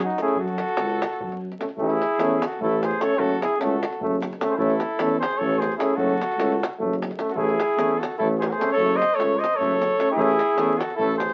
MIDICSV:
0, 0, Header, 1, 7, 480
1, 0, Start_track
1, 0, Tempo, 399202
1, 446, Time_signature, 7, 3, 24, 8
1, 13629, End_track
2, 0, Start_track
2, 0, Title_t, "Flugelhorn"
2, 0, Program_c, 0, 56
2, 36, Note_on_c, 0, 66, 64
2, 227, Note_off_c, 0, 66, 0
2, 248, Note_on_c, 0, 68, 85
2, 439, Note_off_c, 0, 68, 0
2, 479, Note_on_c, 0, 69, 99
2, 1677, Note_off_c, 0, 69, 0
2, 2173, Note_on_c, 0, 68, 81
2, 2957, Note_on_c, 0, 69, 71
2, 2975, Note_off_c, 0, 68, 0
2, 3153, Note_off_c, 0, 69, 0
2, 3161, Note_on_c, 0, 69, 82
2, 3421, Note_on_c, 0, 72, 86
2, 3439, Note_off_c, 0, 69, 0
2, 3631, Note_on_c, 0, 73, 102
2, 3650, Note_off_c, 0, 72, 0
2, 3833, Note_on_c, 0, 69, 99
2, 3851, Note_off_c, 0, 73, 0
2, 4107, Note_off_c, 0, 69, 0
2, 4115, Note_on_c, 0, 68, 87
2, 4313, Note_off_c, 0, 68, 0
2, 4330, Note_on_c, 0, 69, 83
2, 4851, Note_off_c, 0, 69, 0
2, 5396, Note_on_c, 0, 72, 72
2, 5497, Note_on_c, 0, 69, 95
2, 5515, Note_off_c, 0, 72, 0
2, 6240, Note_off_c, 0, 69, 0
2, 6247, Note_on_c, 0, 72, 96
2, 6458, Note_on_c, 0, 73, 91
2, 6476, Note_off_c, 0, 72, 0
2, 6716, Note_on_c, 0, 72, 80
2, 6734, Note_off_c, 0, 73, 0
2, 6934, Note_off_c, 0, 72, 0
2, 6941, Note_on_c, 0, 68, 85
2, 7156, Note_on_c, 0, 69, 90
2, 7174, Note_off_c, 0, 68, 0
2, 8168, Note_off_c, 0, 69, 0
2, 8797, Note_on_c, 0, 69, 68
2, 8858, Note_on_c, 0, 68, 104
2, 8876, Note_off_c, 0, 69, 0
2, 9594, Note_on_c, 0, 69, 81
2, 9612, Note_off_c, 0, 68, 0
2, 9828, Note_off_c, 0, 69, 0
2, 9835, Note_on_c, 0, 69, 82
2, 9953, Note_off_c, 0, 69, 0
2, 10091, Note_on_c, 0, 72, 81
2, 10176, Note_on_c, 0, 69, 65
2, 10194, Note_off_c, 0, 72, 0
2, 10228, Note_on_c, 0, 72, 84
2, 10246, Note_off_c, 0, 69, 0
2, 10470, Note_off_c, 0, 72, 0
2, 10477, Note_on_c, 0, 73, 97
2, 10772, Note_on_c, 0, 75, 104
2, 10790, Note_off_c, 0, 73, 0
2, 10999, Note_on_c, 0, 73, 102
2, 11017, Note_off_c, 0, 75, 0
2, 11292, Note_on_c, 0, 75, 88
2, 11310, Note_off_c, 0, 73, 0
2, 11495, Note_on_c, 0, 73, 109
2, 11513, Note_off_c, 0, 75, 0
2, 12153, Note_off_c, 0, 73, 0
2, 12160, Note_on_c, 0, 68, 106
2, 12958, Note_on_c, 0, 69, 85
2, 12976, Note_off_c, 0, 68, 0
2, 13174, Note_off_c, 0, 69, 0
2, 13181, Note_on_c, 0, 69, 103
2, 13426, Note_off_c, 0, 69, 0
2, 13433, Note_on_c, 0, 72, 87
2, 13629, Note_off_c, 0, 72, 0
2, 13629, End_track
3, 0, Start_track
3, 0, Title_t, "Trumpet"
3, 0, Program_c, 1, 56
3, 54, Note_on_c, 1, 63, 66
3, 237, Note_off_c, 1, 63, 0
3, 272, Note_on_c, 1, 64, 76
3, 452, Note_off_c, 1, 64, 0
3, 479, Note_on_c, 1, 66, 85
3, 1677, Note_off_c, 1, 66, 0
3, 2186, Note_on_c, 1, 64, 93
3, 2957, Note_on_c, 1, 66, 70
3, 2975, Note_off_c, 1, 64, 0
3, 3139, Note_off_c, 1, 66, 0
3, 3147, Note_on_c, 1, 64, 78
3, 3399, Note_on_c, 1, 68, 71
3, 3417, Note_off_c, 1, 64, 0
3, 3616, Note_on_c, 1, 69, 82
3, 3634, Note_off_c, 1, 68, 0
3, 3811, Note_on_c, 1, 66, 89
3, 3829, Note_off_c, 1, 69, 0
3, 4096, Note_off_c, 1, 66, 0
3, 4106, Note_on_c, 1, 64, 78
3, 4298, Note_off_c, 1, 64, 0
3, 4305, Note_on_c, 1, 66, 63
3, 4837, Note_off_c, 1, 66, 0
3, 5414, Note_on_c, 1, 68, 59
3, 5478, Note_on_c, 1, 64, 93
3, 5496, Note_off_c, 1, 68, 0
3, 6237, Note_off_c, 1, 64, 0
3, 6244, Note_on_c, 1, 68, 71
3, 6468, Note_on_c, 1, 69, 85
3, 6486, Note_off_c, 1, 68, 0
3, 6719, Note_on_c, 1, 68, 72
3, 6737, Note_off_c, 1, 69, 0
3, 6930, Note_off_c, 1, 68, 0
3, 6938, Note_on_c, 1, 64, 70
3, 7170, Note_on_c, 1, 66, 85
3, 7188, Note_off_c, 1, 64, 0
3, 8175, Note_off_c, 1, 66, 0
3, 8774, Note_on_c, 1, 66, 63
3, 8852, Note_on_c, 1, 64, 79
3, 8870, Note_off_c, 1, 66, 0
3, 9614, Note_on_c, 1, 66, 65
3, 9632, Note_off_c, 1, 64, 0
3, 9832, Note_off_c, 1, 66, 0
3, 9839, Note_on_c, 1, 64, 80
3, 9957, Note_off_c, 1, 64, 0
3, 10080, Note_on_c, 1, 68, 79
3, 10192, Note_on_c, 1, 66, 67
3, 10211, Note_off_c, 1, 68, 0
3, 10247, Note_on_c, 1, 68, 71
3, 10265, Note_off_c, 1, 66, 0
3, 10485, Note_off_c, 1, 68, 0
3, 10492, Note_on_c, 1, 69, 101
3, 10779, Note_on_c, 1, 72, 89
3, 10797, Note_off_c, 1, 69, 0
3, 10986, Note_on_c, 1, 69, 75
3, 11004, Note_off_c, 1, 72, 0
3, 11261, Note_on_c, 1, 72, 76
3, 11279, Note_off_c, 1, 69, 0
3, 11481, Note_on_c, 1, 69, 91
3, 11499, Note_off_c, 1, 72, 0
3, 12157, Note_off_c, 1, 69, 0
3, 12165, Note_on_c, 1, 64, 106
3, 12950, Note_on_c, 1, 66, 82
3, 12968, Note_off_c, 1, 64, 0
3, 13156, Note_off_c, 1, 66, 0
3, 13163, Note_on_c, 1, 64, 77
3, 13416, Note_off_c, 1, 64, 0
3, 13423, Note_on_c, 1, 68, 65
3, 13629, Note_off_c, 1, 68, 0
3, 13629, End_track
4, 0, Start_track
4, 0, Title_t, "Euphonium"
4, 0, Program_c, 2, 58
4, 244, Note_on_c, 2, 61, 62
4, 440, Note_off_c, 2, 61, 0
4, 1929, Note_on_c, 2, 61, 45
4, 2013, Note_off_c, 2, 61, 0
4, 2147, Note_on_c, 2, 61, 66
4, 2346, Note_off_c, 2, 61, 0
4, 2655, Note_on_c, 2, 61, 72
4, 2852, Note_off_c, 2, 61, 0
4, 3152, Note_on_c, 2, 61, 57
4, 3336, Note_off_c, 2, 61, 0
4, 3602, Note_on_c, 2, 61, 63
4, 3800, Note_off_c, 2, 61, 0
4, 3818, Note_on_c, 2, 61, 78
4, 4018, Note_off_c, 2, 61, 0
4, 4309, Note_on_c, 2, 61, 77
4, 4512, Note_off_c, 2, 61, 0
4, 4838, Note_on_c, 2, 61, 69
4, 5021, Note_off_c, 2, 61, 0
4, 5291, Note_on_c, 2, 61, 55
4, 5487, Note_off_c, 2, 61, 0
4, 5502, Note_on_c, 2, 61, 81
4, 5702, Note_off_c, 2, 61, 0
4, 6001, Note_on_c, 2, 61, 70
4, 6201, Note_off_c, 2, 61, 0
4, 6492, Note_on_c, 2, 61, 63
4, 6679, Note_off_c, 2, 61, 0
4, 6945, Note_on_c, 2, 61, 59
4, 7146, Note_off_c, 2, 61, 0
4, 7175, Note_on_c, 2, 61, 73
4, 7376, Note_off_c, 2, 61, 0
4, 7671, Note_on_c, 2, 61, 66
4, 7872, Note_off_c, 2, 61, 0
4, 8189, Note_on_c, 2, 61, 66
4, 8372, Note_off_c, 2, 61, 0
4, 8639, Note_on_c, 2, 61, 50
4, 8836, Note_off_c, 2, 61, 0
4, 8856, Note_on_c, 2, 61, 60
4, 9056, Note_off_c, 2, 61, 0
4, 9353, Note_on_c, 2, 61, 65
4, 9554, Note_off_c, 2, 61, 0
4, 9856, Note_on_c, 2, 61, 59
4, 10042, Note_off_c, 2, 61, 0
4, 10345, Note_on_c, 2, 61, 59
4, 10537, Note_off_c, 2, 61, 0
4, 10561, Note_on_c, 2, 61, 77
4, 10755, Note_off_c, 2, 61, 0
4, 11046, Note_on_c, 2, 61, 68
4, 11244, Note_off_c, 2, 61, 0
4, 11538, Note_on_c, 2, 61, 70
4, 11723, Note_off_c, 2, 61, 0
4, 12000, Note_on_c, 2, 61, 66
4, 12196, Note_off_c, 2, 61, 0
4, 12209, Note_on_c, 2, 61, 82
4, 12409, Note_off_c, 2, 61, 0
4, 12698, Note_on_c, 2, 61, 74
4, 12901, Note_off_c, 2, 61, 0
4, 13206, Note_on_c, 2, 61, 69
4, 13393, Note_off_c, 2, 61, 0
4, 13629, End_track
5, 0, Start_track
5, 0, Title_t, "Trombone"
5, 0, Program_c, 3, 57
5, 242, Note_on_c, 3, 57, 60
5, 438, Note_off_c, 3, 57, 0
5, 1922, Note_on_c, 3, 57, 47
5, 2007, Note_off_c, 3, 57, 0
5, 2132, Note_on_c, 3, 57, 55
5, 2334, Note_off_c, 3, 57, 0
5, 2638, Note_on_c, 3, 57, 59
5, 2839, Note_off_c, 3, 57, 0
5, 3135, Note_on_c, 3, 57, 66
5, 3322, Note_off_c, 3, 57, 0
5, 3596, Note_on_c, 3, 57, 58
5, 3795, Note_off_c, 3, 57, 0
5, 3818, Note_on_c, 3, 57, 63
5, 4019, Note_off_c, 3, 57, 0
5, 4331, Note_on_c, 3, 57, 64
5, 4529, Note_off_c, 3, 57, 0
5, 4822, Note_on_c, 3, 57, 57
5, 5008, Note_off_c, 3, 57, 0
5, 5299, Note_on_c, 3, 57, 63
5, 5494, Note_off_c, 3, 57, 0
5, 5505, Note_on_c, 3, 57, 65
5, 5704, Note_off_c, 3, 57, 0
5, 5996, Note_on_c, 3, 57, 63
5, 6197, Note_off_c, 3, 57, 0
5, 6505, Note_on_c, 3, 57, 54
5, 6690, Note_off_c, 3, 57, 0
5, 6959, Note_on_c, 3, 57, 62
5, 7157, Note_off_c, 3, 57, 0
5, 7175, Note_on_c, 3, 57, 63
5, 7376, Note_off_c, 3, 57, 0
5, 7680, Note_on_c, 3, 57, 50
5, 7880, Note_off_c, 3, 57, 0
5, 8166, Note_on_c, 3, 57, 57
5, 8354, Note_off_c, 3, 57, 0
5, 8633, Note_on_c, 3, 57, 51
5, 8832, Note_off_c, 3, 57, 0
5, 8837, Note_on_c, 3, 57, 53
5, 9041, Note_off_c, 3, 57, 0
5, 9346, Note_on_c, 3, 57, 59
5, 9548, Note_off_c, 3, 57, 0
5, 9856, Note_on_c, 3, 57, 60
5, 10042, Note_off_c, 3, 57, 0
5, 10320, Note_on_c, 3, 57, 67
5, 10517, Note_off_c, 3, 57, 0
5, 10522, Note_on_c, 3, 57, 61
5, 10724, Note_off_c, 3, 57, 0
5, 11025, Note_on_c, 3, 57, 59
5, 11227, Note_off_c, 3, 57, 0
5, 11533, Note_on_c, 3, 57, 67
5, 11719, Note_off_c, 3, 57, 0
5, 12007, Note_on_c, 3, 57, 58
5, 12202, Note_off_c, 3, 57, 0
5, 12218, Note_on_c, 3, 57, 74
5, 12417, Note_off_c, 3, 57, 0
5, 12708, Note_on_c, 3, 57, 75
5, 12909, Note_off_c, 3, 57, 0
5, 13210, Note_on_c, 3, 57, 68
5, 13396, Note_off_c, 3, 57, 0
5, 13629, End_track
6, 0, Start_track
6, 0, Title_t, "Tuba"
6, 0, Program_c, 4, 58
6, 0, Note_on_c, 4, 42, 97
6, 134, Note_off_c, 4, 42, 0
6, 444, Note_on_c, 4, 42, 91
6, 722, Note_off_c, 4, 42, 0
6, 953, Note_on_c, 4, 37, 82
6, 1229, Note_off_c, 4, 37, 0
6, 1449, Note_on_c, 4, 42, 69
6, 1824, Note_off_c, 4, 42, 0
6, 2127, Note_on_c, 4, 33, 94
6, 2406, Note_off_c, 4, 33, 0
6, 2621, Note_on_c, 4, 40, 86
6, 2902, Note_off_c, 4, 40, 0
6, 3135, Note_on_c, 4, 33, 102
6, 3509, Note_off_c, 4, 33, 0
6, 3820, Note_on_c, 4, 30, 78
6, 4096, Note_off_c, 4, 30, 0
6, 4329, Note_on_c, 4, 37, 78
6, 4602, Note_off_c, 4, 37, 0
6, 4830, Note_on_c, 4, 30, 88
6, 5200, Note_off_c, 4, 30, 0
6, 5500, Note_on_c, 4, 33, 97
6, 5775, Note_off_c, 4, 33, 0
6, 6001, Note_on_c, 4, 40, 91
6, 6276, Note_off_c, 4, 40, 0
6, 6506, Note_on_c, 4, 33, 96
6, 6876, Note_off_c, 4, 33, 0
6, 7167, Note_on_c, 4, 30, 102
6, 7445, Note_off_c, 4, 30, 0
6, 7653, Note_on_c, 4, 37, 86
6, 7935, Note_off_c, 4, 37, 0
6, 8161, Note_on_c, 4, 30, 91
6, 8537, Note_off_c, 4, 30, 0
6, 8834, Note_on_c, 4, 33, 94
6, 9115, Note_off_c, 4, 33, 0
6, 9345, Note_on_c, 4, 40, 80
6, 9623, Note_off_c, 4, 40, 0
6, 9855, Note_on_c, 4, 33, 104
6, 10227, Note_off_c, 4, 33, 0
6, 10545, Note_on_c, 4, 30, 97
6, 10816, Note_off_c, 4, 30, 0
6, 11039, Note_on_c, 4, 37, 69
6, 11313, Note_off_c, 4, 37, 0
6, 11548, Note_on_c, 4, 30, 88
6, 11915, Note_off_c, 4, 30, 0
6, 12213, Note_on_c, 4, 33, 93
6, 12488, Note_off_c, 4, 33, 0
6, 12712, Note_on_c, 4, 40, 93
6, 12987, Note_off_c, 4, 40, 0
6, 13220, Note_on_c, 4, 33, 79
6, 13589, Note_off_c, 4, 33, 0
6, 13629, End_track
7, 0, Start_track
7, 0, Title_t, "Davul"
7, 1, Note_on_c, 9, 37, 60
7, 121, Note_off_c, 9, 37, 0
7, 123, Note_on_c, 9, 37, 26
7, 219, Note_off_c, 9, 37, 0
7, 219, Note_on_c, 9, 37, 55
7, 339, Note_off_c, 9, 37, 0
7, 339, Note_on_c, 9, 37, 24
7, 429, Note_on_c, 9, 43, 70
7, 459, Note_off_c, 9, 37, 0
7, 549, Note_off_c, 9, 43, 0
7, 574, Note_on_c, 9, 37, 24
7, 694, Note_off_c, 9, 37, 0
7, 699, Note_on_c, 9, 37, 58
7, 819, Note_off_c, 9, 37, 0
7, 819, Note_on_c, 9, 37, 24
7, 926, Note_off_c, 9, 37, 0
7, 926, Note_on_c, 9, 37, 72
7, 1047, Note_off_c, 9, 37, 0
7, 1076, Note_on_c, 9, 37, 25
7, 1196, Note_off_c, 9, 37, 0
7, 1226, Note_on_c, 9, 37, 74
7, 1346, Note_off_c, 9, 37, 0
7, 1355, Note_on_c, 9, 37, 22
7, 1449, Note_on_c, 9, 43, 87
7, 1475, Note_off_c, 9, 37, 0
7, 1570, Note_off_c, 9, 43, 0
7, 1588, Note_on_c, 9, 37, 24
7, 1708, Note_off_c, 9, 37, 0
7, 1824, Note_on_c, 9, 37, 24
7, 1932, Note_off_c, 9, 37, 0
7, 1932, Note_on_c, 9, 37, 56
7, 2031, Note_off_c, 9, 37, 0
7, 2031, Note_on_c, 9, 37, 20
7, 2135, Note_on_c, 9, 43, 64
7, 2151, Note_off_c, 9, 37, 0
7, 2255, Note_off_c, 9, 43, 0
7, 2283, Note_on_c, 9, 37, 22
7, 2403, Note_off_c, 9, 37, 0
7, 2425, Note_on_c, 9, 37, 50
7, 2546, Note_off_c, 9, 37, 0
7, 2638, Note_on_c, 9, 37, 68
7, 2759, Note_off_c, 9, 37, 0
7, 2910, Note_on_c, 9, 37, 73
7, 3030, Note_off_c, 9, 37, 0
7, 3034, Note_on_c, 9, 37, 21
7, 3140, Note_on_c, 9, 43, 72
7, 3154, Note_off_c, 9, 37, 0
7, 3260, Note_off_c, 9, 43, 0
7, 3401, Note_on_c, 9, 37, 57
7, 3497, Note_off_c, 9, 37, 0
7, 3497, Note_on_c, 9, 37, 28
7, 3617, Note_off_c, 9, 37, 0
7, 3621, Note_on_c, 9, 37, 63
7, 3741, Note_off_c, 9, 37, 0
7, 3836, Note_on_c, 9, 43, 75
7, 3956, Note_off_c, 9, 43, 0
7, 3977, Note_on_c, 9, 37, 22
7, 4097, Note_off_c, 9, 37, 0
7, 4116, Note_on_c, 9, 37, 65
7, 4237, Note_off_c, 9, 37, 0
7, 4339, Note_on_c, 9, 37, 70
7, 4459, Note_off_c, 9, 37, 0
7, 4602, Note_on_c, 9, 37, 71
7, 4720, Note_off_c, 9, 37, 0
7, 4720, Note_on_c, 9, 37, 26
7, 4823, Note_on_c, 9, 43, 82
7, 4840, Note_off_c, 9, 37, 0
7, 4943, Note_off_c, 9, 43, 0
7, 5078, Note_on_c, 9, 37, 60
7, 5199, Note_off_c, 9, 37, 0
7, 5204, Note_on_c, 9, 37, 30
7, 5305, Note_off_c, 9, 37, 0
7, 5305, Note_on_c, 9, 37, 69
7, 5425, Note_off_c, 9, 37, 0
7, 5513, Note_on_c, 9, 43, 81
7, 5633, Note_off_c, 9, 43, 0
7, 5655, Note_on_c, 9, 37, 24
7, 5771, Note_off_c, 9, 37, 0
7, 5771, Note_on_c, 9, 37, 64
7, 5891, Note_off_c, 9, 37, 0
7, 6001, Note_on_c, 9, 37, 74
7, 6122, Note_off_c, 9, 37, 0
7, 6283, Note_on_c, 9, 37, 77
7, 6399, Note_off_c, 9, 37, 0
7, 6399, Note_on_c, 9, 37, 27
7, 6502, Note_on_c, 9, 43, 83
7, 6520, Note_off_c, 9, 37, 0
7, 6622, Note_off_c, 9, 43, 0
7, 6757, Note_on_c, 9, 37, 61
7, 6875, Note_off_c, 9, 37, 0
7, 6875, Note_on_c, 9, 37, 26
7, 6976, Note_off_c, 9, 37, 0
7, 6976, Note_on_c, 9, 37, 71
7, 7096, Note_off_c, 9, 37, 0
7, 7187, Note_on_c, 9, 43, 69
7, 7307, Note_off_c, 9, 43, 0
7, 7328, Note_on_c, 9, 37, 23
7, 7448, Note_off_c, 9, 37, 0
7, 7473, Note_on_c, 9, 37, 62
7, 7593, Note_off_c, 9, 37, 0
7, 7595, Note_on_c, 9, 37, 30
7, 7690, Note_off_c, 9, 37, 0
7, 7690, Note_on_c, 9, 37, 63
7, 7810, Note_off_c, 9, 37, 0
7, 7841, Note_on_c, 9, 37, 31
7, 7962, Note_off_c, 9, 37, 0
7, 7976, Note_on_c, 9, 37, 82
7, 8096, Note_off_c, 9, 37, 0
7, 8205, Note_on_c, 9, 43, 77
7, 8325, Note_off_c, 9, 43, 0
7, 8337, Note_on_c, 9, 37, 28
7, 8445, Note_off_c, 9, 37, 0
7, 8445, Note_on_c, 9, 37, 58
7, 8548, Note_off_c, 9, 37, 0
7, 8548, Note_on_c, 9, 37, 28
7, 8643, Note_off_c, 9, 37, 0
7, 8643, Note_on_c, 9, 37, 59
7, 8763, Note_off_c, 9, 37, 0
7, 8771, Note_on_c, 9, 37, 28
7, 8864, Note_on_c, 9, 43, 82
7, 8891, Note_off_c, 9, 37, 0
7, 8984, Note_off_c, 9, 43, 0
7, 9006, Note_on_c, 9, 37, 28
7, 9127, Note_off_c, 9, 37, 0
7, 9133, Note_on_c, 9, 37, 68
7, 9253, Note_off_c, 9, 37, 0
7, 9361, Note_on_c, 9, 37, 70
7, 9481, Note_off_c, 9, 37, 0
7, 9655, Note_on_c, 9, 37, 74
7, 9757, Note_off_c, 9, 37, 0
7, 9757, Note_on_c, 9, 37, 25
7, 9852, Note_on_c, 9, 43, 75
7, 9877, Note_off_c, 9, 37, 0
7, 9972, Note_off_c, 9, 43, 0
7, 10126, Note_on_c, 9, 37, 67
7, 10246, Note_off_c, 9, 37, 0
7, 10249, Note_on_c, 9, 37, 26
7, 10355, Note_off_c, 9, 37, 0
7, 10355, Note_on_c, 9, 37, 60
7, 10476, Note_off_c, 9, 37, 0
7, 10553, Note_on_c, 9, 43, 66
7, 10673, Note_off_c, 9, 43, 0
7, 10710, Note_on_c, 9, 37, 20
7, 10830, Note_off_c, 9, 37, 0
7, 10843, Note_on_c, 9, 37, 58
7, 10963, Note_off_c, 9, 37, 0
7, 11060, Note_on_c, 9, 37, 61
7, 11180, Note_off_c, 9, 37, 0
7, 11348, Note_on_c, 9, 37, 55
7, 11451, Note_off_c, 9, 37, 0
7, 11451, Note_on_c, 9, 37, 20
7, 11553, Note_on_c, 9, 43, 77
7, 11571, Note_off_c, 9, 37, 0
7, 11673, Note_off_c, 9, 43, 0
7, 11803, Note_on_c, 9, 37, 56
7, 11916, Note_off_c, 9, 37, 0
7, 11916, Note_on_c, 9, 37, 24
7, 12024, Note_off_c, 9, 37, 0
7, 12024, Note_on_c, 9, 37, 61
7, 12144, Note_off_c, 9, 37, 0
7, 12229, Note_on_c, 9, 43, 74
7, 12349, Note_off_c, 9, 43, 0
7, 12366, Note_on_c, 9, 37, 21
7, 12486, Note_off_c, 9, 37, 0
7, 12496, Note_on_c, 9, 37, 59
7, 12616, Note_off_c, 9, 37, 0
7, 12718, Note_on_c, 9, 37, 64
7, 12838, Note_off_c, 9, 37, 0
7, 12992, Note_on_c, 9, 37, 72
7, 13109, Note_off_c, 9, 37, 0
7, 13109, Note_on_c, 9, 37, 25
7, 13219, Note_on_c, 9, 43, 80
7, 13229, Note_off_c, 9, 37, 0
7, 13339, Note_off_c, 9, 43, 0
7, 13469, Note_on_c, 9, 37, 63
7, 13581, Note_off_c, 9, 37, 0
7, 13581, Note_on_c, 9, 37, 30
7, 13629, Note_off_c, 9, 37, 0
7, 13629, End_track
0, 0, End_of_file